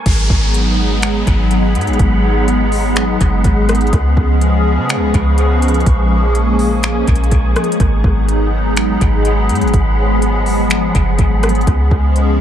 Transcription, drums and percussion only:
0.06 kick, closed hi-hat, crash
0.30 kick
0.54 closed hi-hat
1.02 finger snap, closed hi-hat
1.27 kick, closed hi-hat
1.51 closed hi-hat
1.75 closed hi-hat
1.81 closed hi-hat
1.87 closed hi-hat
1.93 closed hi-hat
1.99 kick, closed hi-hat
2.48 closed hi-hat
2.72 open hi-hat
2.96 finger snap, closed hi-hat
3.21 kick, closed hi-hat
3.44 kick, closed hi-hat
3.69 cross-stick, closed hi-hat
3.75 closed hi-hat
3.81 closed hi-hat
3.87 closed hi-hat
3.93 kick, closed hi-hat
4.17 kick
4.41 closed hi-hat
4.89 finger snap, closed hi-hat
5.14 kick, closed hi-hat
5.38 closed hi-hat
5.62 closed hi-hat
5.68 closed hi-hat
5.74 closed hi-hat
5.80 closed hi-hat
5.86 kick, closed hi-hat
6.35 closed hi-hat
6.59 open hi-hat
6.83 finger snap, closed hi-hat
7.07 kick, closed hi-hat
7.16 closed hi-hat
7.24 closed hi-hat
7.31 kick, closed hi-hat
7.56 cross-stick, closed hi-hat
7.64 closed hi-hat
7.72 closed hi-hat
7.80 kick, closed hi-hat
8.04 kick
8.29 closed hi-hat
8.77 finger snap, closed hi-hat
9.01 kick, closed hi-hat
9.25 closed hi-hat
9.49 closed hi-hat
9.55 closed hi-hat
9.61 closed hi-hat
9.68 closed hi-hat
9.74 kick, closed hi-hat
10.22 closed hi-hat
10.46 open hi-hat
10.70 finger snap, closed hi-hat
10.95 kick, closed hi-hat
11.19 kick, closed hi-hat
11.43 cross-stick, closed hi-hat
11.49 closed hi-hat
11.55 closed hi-hat
11.61 closed hi-hat
11.67 kick, closed hi-hat
11.91 kick
12.16 closed hi-hat

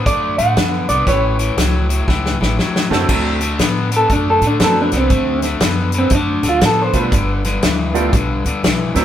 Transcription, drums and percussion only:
0.06 kick, closed hi-hat
0.39 closed hi-hat
0.57 snare, closed hi-hat
0.89 closed hi-hat
1.07 kick, snare, closed hi-hat
1.39 closed hi-hat
1.58 snare, closed hi-hat
1.90 closed hi-hat
2.08 kick, snare
2.26 snare
2.43 snare
2.59 snare
2.76 snare
2.92 snare
3.09 kick, crash
3.41 closed hi-hat
3.59 snare, closed hi-hat
3.92 closed hi-hat
4.10 kick, closed hi-hat
4.42 closed hi-hat
4.60 snare, closed hi-hat
4.92 snare, closed hi-hat
5.10 kick, closed hi-hat
5.42 snare, closed hi-hat
5.60 snare, closed hi-hat
5.92 closed hi-hat
6.10 kick, closed hi-hat
6.43 snare, closed hi-hat
6.61 snare, closed hi-hat
6.93 kick, closed hi-hat
7.12 kick, closed hi-hat
7.45 snare, closed hi-hat
7.62 snare, closed hi-hat
7.95 closed hi-hat
8.13 kick, closed hi-hat
8.46 closed hi-hat
8.64 snare, closed hi-hat
8.95 snare, closed hi-hat

